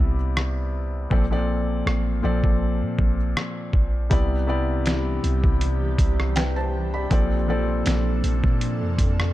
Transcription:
0.00 1.07 C2 loud
0.00 1.12 C3 medium
0.00 1.13 G3 medium
0.00 1.13 B3 medium
0.00 1.12 E4 medium
0.00 1.12 D5 medium
0.37 cross-stick loud
1.10 1.83 A#1 loud
1.10 1.23 A#2 medium
1.10 1.23 F3 medium
1.10 1.23 C4 medium
1.10 1.24 A4 medium
1.10 1.24 D5 medium
1.10 kick loud
1.30 1.86 A#2 medium
1.30 1.87 F3 medium
1.30 1.87 C4 medium
1.30 1.87 A4 medium
1.30 1.88 D5 medium
1.86 2.22 A1 loud
1.86 cross-stick loud
2.22 2.43 A#1 loud
2.22 3.16 A#2 medium
2.22 3.16 F3 medium
2.22 3.16 C4 medium
2.22 3.16 A4 medium
2.22 3.17 D5 medium
2.44 2.83 A#1 loud
2.44 kick medium
2.82 2.98 A#2 loud
2.99 3.35 A#1 loud
2.99 kick medium
3.37 cross-stick loud
3.73 4.10 A#1 loud
3.73 kick medium
4.10 5.20 C2 loud
4.10 4.34 C3 medium
4.10 9.33 C3 medium
4.10 7.08 E3 medium
4.10 4.35 G3 medium
4.10 7.08 G3 medium
4.10 4.35 B3 medium
4.10 9.33 D4 medium
4.10 4.35 E4 medium
4.10 7.08 G4 medium
4.10 4.36 D5 medium
4.10 kick loud
4.10 closed hi-hat medium
4.47 5.40 C3 medium
4.47 5.41 G3 medium
4.47 5.41 B3 medium
4.47 5.41 E4 medium
4.47 5.42 D5 medium
4.86 snare loud
4.86 closed hi-hat medium
5.24 5.43 C2 loud
5.24 closed hi-hat medium
5.44 5.96 C2 loud
5.44 kick medium
5.61 closed hi-hat medium
5.99 7.07 C2 loud
5.99 kick loud
5.99 closed hi-hat medium
6.20 cross-stick medium
6.36 6.56 B4 medium
6.36 6.55 G5 medium
6.36 snare loud
6.36 closed hi-hat medium
6.56 6.92 C5 medium
6.56 6.92 A5 medium
6.94 7.11 D5 medium
6.94 7.29 B5 medium
7.10 7.83 A#1 loud
7.10 7.35 A#2 medium
7.10 7.35 F3 medium
7.10 9.33 F3 medium
7.10 9.33 A#3 medium
7.10 7.35 C4 medium
7.10 9.33 A4 medium
7.10 7.35 A4 medium
7.10 7.36 D5 medium
7.10 kick loud
7.10 closed hi-hat medium
7.48 8.41 A#2 medium
7.48 8.41 F3 medium
7.48 8.41 C4 medium
7.48 8.42 A4 medium
7.48 8.42 D5 medium
7.86 8.22 A#1 loud
7.86 snare loud
7.86 closed hi-hat medium
8.24 8.43 A#1 loud
8.24 closed hi-hat medium
8.44 8.83 A#2 loud
8.44 kick loud
8.61 closed hi-hat medium
8.82 8.98 F2 loud
8.98 9.33 F2 loud
8.98 kick loud
8.98 closed hi-hat medium
9.20 cross-stick loud

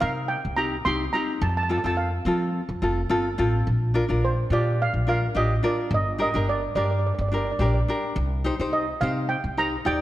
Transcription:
0.00 0.34 C3 loud
0.00 0.35 C4 medium
0.00 0.35 D#4 medium
0.00 0.36 A#4 medium
0.00 0.27 F5 medium
0.28 0.55 G5 medium
0.45 0.76 C2 medium
0.56 0.75 C4 medium
0.56 0.75 D#4 soft
0.56 0.75 G4 medium
0.56 0.86 A#5 medium
0.85 1.07 C2 medium
0.85 1.03 C4 medium
0.85 1.04 D#4 medium
0.85 1.04 G4 medium
0.85 0.98 C6 medium
1.13 1.42 C4 medium
1.13 1.42 D#4 medium
1.13 1.43 G4 medium
1.13 1.42 A#5 medium
1.41 1.74 F2 loud
1.41 1.48 A5 medium
1.50 1.56 A5 medium
1.57 1.62 A5 medium
1.63 1.70 A5 medium
1.69 1.79 C4 medium
1.69 1.79 F4 medium
1.69 1.79 A4 medium
1.69 1.77 A5 medium
1.78 1.85 A5 medium
1.84 2.16 F2 medium
1.84 2.10 C4 medium
1.84 2.10 F4 medium
1.84 2.11 A4 medium
1.84 1.94 A5 medium
1.97 3.34 F5 medium
2.25 2.58 F3 medium
2.25 2.60 C4 medium
2.25 2.61 F4 medium
2.25 2.61 A4 medium
2.69 2.79 F2 medium
2.82 3.08 F1 medium
2.82 3.00 C4 medium
2.82 3.00 F4 medium
2.82 3.00 A4 medium
3.09 3.36 G1 medium
3.09 3.28 C4 medium
3.09 3.28 F4 medium
3.09 3.28 A4 medium
3.38 3.64 A1 medium
3.38 3.66 C4 medium
3.38 3.67 F4 medium
3.38 3.67 A4 medium
3.67 4.00 A#1 medium
3.94 4.03 D4 medium
3.94 4.04 F4 medium
3.94 4.04 A#4 medium
4.08 4.41 A#1 medium
4.08 4.34 D4 medium
4.08 4.35 F4 medium
4.08 4.35 A#4 medium
4.25 4.37 C5 medium
4.50 4.83 A#2 medium
4.50 4.85 D4 medium
4.50 4.86 F4 medium
4.50 4.86 G4 medium
4.50 4.81 D5 medium
4.82 4.94 F5 medium
4.93 5.25 A#1 medium
5.07 5.25 D4 medium
5.07 5.25 F4 soft
5.07 5.25 A#4 medium
5.07 5.37 F5 medium
5.35 5.57 A1 medium
5.35 5.53 D4 medium
5.35 5.53 F4 medium
5.35 5.53 G4 medium
5.35 5.65 D#5 medium
5.63 5.91 D4 medium
5.63 5.92 F4 medium
5.63 5.92 A#4 medium
5.63 5.94 D5 medium
5.91 6.24 G1 loud
5.91 6.21 D#5 medium
6.18 6.28 D4 medium
6.18 6.28 G4 medium
6.18 6.29 A#4 medium
6.18 6.47 D#5 medium
6.34 6.66 G1 medium
6.34 6.59 D4 medium
6.34 6.60 G4 medium
6.34 6.60 A#4 medium
6.49 6.75 D5 medium
6.75 7.08 G2 medium
6.75 7.10 D4 medium
6.75 7.10 G4 medium
6.75 7.11 A#4 medium
6.75 6.83 D5 medium
6.85 6.90 D5 medium
6.91 6.98 D5 soft
6.99 7.05 D5 soft
7.07 7.13 D5 medium
7.15 7.50 G1 medium
7.15 7.20 D5 soft
7.21 7.27 D5 medium
7.29 7.50 D4 medium
7.29 7.50 G4 medium
7.29 7.36 D5 soft
7.34 7.51 A#4 medium
7.34 7.44 D5 medium
7.45 7.50 D5 soft
7.52 7.58 D5 soft
7.59 7.81 A#1 medium
7.59 7.78 D4 medium
7.59 7.78 G4 medium
7.59 7.78 A#4 medium
7.59 7.65 D5 soft
7.66 7.73 D5 medium
7.74 7.81 D5 medium
7.88 8.17 D4 medium
7.88 8.17 G4 medium
7.88 8.17 A#4 medium
8.16 8.49 C2 loud
8.44 8.54 D#4 medium
8.44 8.54 G4 medium
8.44 8.54 C5 medium
8.59 8.91 C2 medium
8.59 8.85 D#4 medium
8.59 8.85 G4 medium
8.59 8.85 C5 medium
8.73 9.02 D#5 medium
9.01 9.34 C3 loud
9.01 9.35 D#4 medium
9.01 9.36 G4 medium
9.01 9.36 C5 medium
9.01 9.30 F5 medium
9.29 9.55 G5 medium
9.44 9.75 C2 medium
9.57 9.75 D#4 medium
9.57 9.75 G4 medium
9.57 9.75 C5 medium
9.57 9.87 A#5 medium
9.85 10.01 D#2 medium
9.85 10.01 D#4 medium
9.85 10.01 G4 medium
9.85 10.01 D5 medium
9.85 10.01 G5 medium

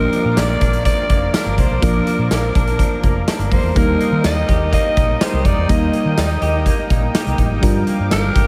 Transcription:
0.00 0.12 F3 medium
0.00 1.78 F3 medium
0.00 1.78 A#3 medium
0.00 1.78 D4 medium
0.00 0.39 A#4 loud
0.00 1.79 A#4 medium
0.00 8.47 A#4 medium
0.00 3.72 D5 medium
0.00 3.72 F5 medium
0.00 3.72 D6 medium
0.13 0.84 F3 medium
0.13 closed hi-hat medium
0.25 0.39 A#2 loud
0.37 0.55 A#1 loud
0.37 1.09 A#3 medium
0.37 0.85 D5 loud
0.37 snare loud
0.37 closed hi-hat medium
0.37 tambourine medium
0.37 tambourine loud
0.61 0.89 A#1 medium
0.61 1.33 D4 medium
0.61 kick loud
0.61 closed hi-hat medium
0.73 closed hi-hat medium
0.85 1.81 F3 medium
0.85 1.36 D5 loud
0.85 kick medium
0.85 closed hi-hat medium
1.09 1.28 F1 loud
1.09 1.58 A#3 medium
1.09 kick medium
1.09 closed hi-hat medium
1.34 2.54 D4 medium
1.34 1.61 A#4 medium
1.34 snare loud
1.34 closed hi-hat medium
1.34 tambourine medium
1.46 1.55 G1 medium
1.58 1.67 C2 loud
1.58 2.31 A#3 medium
1.58 1.85 C5 loud
1.58 kick medium
1.58 closed hi-hat medium
1.70 1.79 B1 medium
1.81 2.00 A#1 loud
1.81 3.72 F3 medium
1.81 2.05 F3 medium
1.81 3.72 A#3 medium
1.81 3.72 D4 medium
1.81 2.31 A#4 loud
1.81 3.73 A#4 medium
1.81 kick loud
1.81 closed hi-hat medium
2.07 2.78 F3 medium
2.07 closed hi-hat medium
2.19 2.28 A#2 loud
2.30 2.49 A#1 medium
2.30 3.04 A#3 medium
2.30 3.24 A#4 medium
2.30 snare loud
2.30 closed hi-hat medium
2.30 tambourine medium
2.55 2.82 A#1 medium
2.55 3.27 D4 medium
2.55 kick loud
2.55 closed hi-hat medium
2.67 closed hi-hat medium
2.79 3.81 F3 medium
2.79 kick medium
2.79 closed hi-hat medium
3.03 3.22 F1 loud
3.03 3.51 A#3 medium
3.03 kick medium
3.03 closed hi-hat medium
3.27 3.81 D4 medium
3.27 snare loud
3.27 closed hi-hat medium
3.27 tambourine medium
3.39 3.48 G1 medium
3.39 closed hi-hat medium
3.51 3.61 F2 medium
3.51 3.76 A#3 medium
3.51 3.79 C5 medium
3.51 kick medium
3.51 open hi-hat medium
3.63 3.73 E2 medium
3.75 3.94 D#2 loud
3.75 5.65 G3 medium
3.75 5.66 A#3 medium
3.75 3.99 A#3 medium
3.75 5.66 D#4 medium
3.75 4.25 A#4 loud
3.75 5.66 A#4 medium
3.75 7.59 D#5 medium
3.75 8.47 G5 medium
3.75 7.59 D#6 medium
3.75 kick loud
3.75 closed hi-hat medium
4.00 4.72 A#3 medium
4.00 closed hi-hat medium
4.12 4.21 D#3 loud
4.24 4.42 D#2 loud
4.24 4.96 D#4 medium
4.24 4.70 D#5 loud
4.24 snare loud
4.24 closed hi-hat medium
4.24 tambourine medium
4.24 tambourine loud
4.48 4.76 D#2 medium
4.48 5.21 G4 medium
4.48 kick medium
4.48 closed hi-hat medium
4.73 5.69 A#3 medium
4.73 5.23 D#5 loud
4.73 kick medium
4.73 closed hi-hat medium
4.97 5.15 A#1 medium
4.97 5.45 D#4 medium
4.97 kick loud
4.97 closed hi-hat medium
5.21 6.42 G4 medium
5.21 5.47 C5 loud
5.21 snare loud
5.21 closed hi-hat medium
5.21 tambourine medium
5.33 5.42 C2 medium
5.45 5.54 F2 loud
5.45 6.17 D#4 medium
5.45 5.72 D5 loud
5.45 kick medium
5.45 closed hi-hat medium
5.57 5.66 E2 medium
5.68 5.88 D#2 loud
5.68 7.59 G3 medium
5.68 7.59 A#3 medium
5.68 5.94 A#3 medium
5.68 7.59 D#4 medium
5.68 7.60 A#4 medium
5.68 6.18 D#5 loud
5.68 kick loud
5.68 closed hi-hat medium
5.93 6.66 A#3 medium
5.93 closed hi-hat medium
6.05 6.15 D#3 loud
6.17 6.36 D#2 medium
6.17 6.89 D#4 medium
6.17 7.11 D#5 medium
6.17 snare loud
6.17 closed hi-hat medium
6.17 tambourine medium
6.17 tambourine loud
6.42 6.69 D#2 loud
6.42 7.14 G4 medium
6.42 closed hi-hat medium
6.66 7.68 A#3 medium
6.66 kick medium
6.66 closed hi-hat medium
6.90 7.09 A#1 loud
6.90 7.38 D#4 medium
6.90 kick medium
6.90 closed hi-hat medium
7.14 8.35 G4 medium
7.14 snare loud
7.14 closed hi-hat medium
7.14 tambourine medium
7.26 7.36 C2 medium
7.26 closed hi-hat medium
7.38 7.48 A1 medium
7.38 7.68 D#4 medium
7.38 kick medium
7.38 closed hi-hat medium
7.51 7.60 G#1 medium
7.61 7.81 G1 loud
7.61 8.47 F3 medium
7.61 8.47 G3 medium
7.61 8.47 D4 medium
7.61 8.47 F4 medium
7.61 8.47 A#4 medium
7.61 8.47 F5 medium
7.61 8.47 D6 medium
7.61 kick loud
7.61 closed hi-hat medium
7.87 8.47 A#3 medium
7.87 closed hi-hat medium
8.00 8.09 G2 medium
8.11 8.30 G1 loud
8.11 8.47 D4 medium
8.11 8.47 A#4 loud
8.11 snare loud
8.11 closed hi-hat medium
8.11 tambourine medium
8.35 8.47 G1 medium
8.35 8.47 G4 medium
8.35 kick loud
8.35 closed hi-hat medium

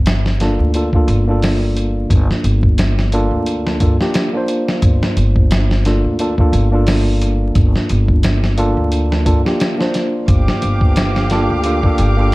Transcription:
0.00 0.55 G1 medium
0.06 snare loud
0.06 closed hi-hat medium
0.26 snare soft
0.40 0.71 A#3 medium
0.40 0.71 D4 medium
0.40 0.71 F4 medium
0.40 0.72 A4 medium
0.40 snare soft
0.40 closed hi-hat medium
0.59 1.05 D2 medium
0.74 0.89 A#3 medium
0.74 0.89 D4 medium
0.74 0.89 F4 medium
0.74 0.90 A4 medium
0.74 closed hi-hat medium
0.93 1.23 A#3 medium
0.93 1.24 D4 medium
0.93 1.24 F4 medium
0.93 1.24 A4 medium
0.93 kick medium
1.08 2.07 G1 medium
1.08 closed hi-hat medium
1.28 3.09 A#3 medium
1.28 3.10 D4 medium
1.28 3.10 F4 medium
1.28 3.11 A4 medium
1.42 snare loud
1.42 open hi-hat medium
1.77 closed hi-hat medium
2.10 2.27 G1 medium
2.10 kick loud
2.10 closed hi-hat medium
2.31 snare soft
2.44 3.28 G1 medium
2.44 closed hi-hat medium
2.63 kick medium
2.78 snare loud
2.78 closed hi-hat medium
2.99 snare soft
3.12 3.78 A#3 loud
3.12 3.78 D4 medium
3.12 3.78 F4 medium
3.12 3.78 A4 medium
3.12 closed hi-hat medium
3.31 3.77 D2 medium
3.46 closed hi-hat medium
3.67 snare soft
3.80 3.97 G2 medium
3.80 3.95 A#3 medium
3.80 3.95 D4 medium
3.80 3.96 F4 medium
3.80 3.96 A4 medium
3.80 kick medium
3.80 closed hi-hat medium
4.00 4.29 A#3 medium
4.00 4.30 D4 medium
4.00 4.30 F4 medium
4.00 4.30 G4 medium
4.00 snare soft
4.14 snare loud
4.14 closed hi-hat medium
4.33 5.81 A#3 medium
4.33 5.82 D4 medium
4.33 5.82 F4 medium
4.33 5.83 C5 medium
4.48 closed hi-hat medium
4.68 snare medium
4.82 4.99 G1 medium
4.82 kick loud
4.82 closed hi-hat medium
5.03 snare medium
5.17 6.00 G1 medium
5.17 closed hi-hat medium
5.36 kick medium
5.51 snare loud
5.51 closed hi-hat medium
5.71 snare soft
5.85 6.16 A#3 medium
5.85 6.16 D4 medium
5.85 6.16 F4 medium
5.85 6.17 A4 medium
5.85 snare soft
5.85 closed hi-hat medium
6.04 6.50 D2 medium
6.19 6.34 A#3 medium
6.19 6.34 D4 medium
6.19 6.35 F4 medium
6.19 6.35 A4 medium
6.19 closed hi-hat medium
6.38 6.68 A#3 medium
6.38 6.69 D4 medium
6.38 6.69 F4 medium
6.38 6.69 A4 medium
6.38 kick medium
6.53 7.52 G1 medium
6.53 closed hi-hat medium
6.72 8.54 A#3 medium
6.72 8.55 D4 medium
6.72 8.55 F4 medium
6.72 8.56 A4 medium
6.87 snare loud
6.87 open hi-hat medium
7.22 closed hi-hat medium
7.55 7.72 G1 medium
7.55 kick loud
7.55 closed hi-hat medium
7.76 snare soft
7.89 8.73 G1 loud
7.89 closed hi-hat medium
8.08 kick medium
8.23 snare loud
8.23 closed hi-hat medium
8.44 snare soft
8.58 9.22 A#3 medium
8.58 9.23 D4 medium
8.58 9.23 F4 medium
8.58 9.23 A4 loud
8.58 closed hi-hat medium
8.77 9.23 D2 medium
8.92 closed hi-hat medium
9.12 snare soft
9.26 9.43 G2 medium
9.26 9.40 A#3 medium
9.26 9.41 D4 medium
9.26 9.41 F4 medium
9.26 9.41 A4 medium
9.26 kick loud
9.26 closed hi-hat medium
9.45 9.74 A#3 medium
9.45 9.75 D4 medium
9.45 9.75 F4 medium
9.45 9.75 G4 medium
9.45 snare soft
9.60 snare medium
9.60 closed hi-hat medium
9.78 11.26 A#3 medium
9.78 11.27 D4 medium
9.78 11.28 F4 medium
9.78 11.28 C5 medium
9.78 snare soft
9.94 snare soft
9.94 closed hi-hat medium
10.28 10.45 G1 medium
10.28 12.35 G4 medium
10.28 12.35 F5 medium
10.28 12.35 D6 medium
10.28 kick loud
10.28 closed hi-hat medium
10.48 snare medium
10.62 11.46 G1 medium
10.62 closed hi-hat medium
10.81 kick medium
10.96 snare loud
10.96 closed hi-hat medium
11.16 snare soft
11.30 11.61 A#3 medium
11.30 11.61 D4 medium
11.30 11.62 F4 medium
11.30 11.62 A4 medium
11.30 snare soft
11.30 closed hi-hat medium
11.50 11.96 D2 medium
11.64 11.79 A#3 medium
11.64 11.80 D4 medium
11.64 11.80 F4 medium
11.64 11.80 A4 medium
11.64 closed hi-hat medium
11.83 12.13 A#3 medium
11.83 12.14 D4 medium
11.83 12.14 F4 medium
11.83 12.15 A4 medium
11.83 kick medium
11.98 12.35 G1 medium
11.98 closed hi-hat medium
12.17 12.35 A#3 medium
12.17 12.35 D4 medium
12.17 12.35 F4 medium
12.17 12.35 A4 medium

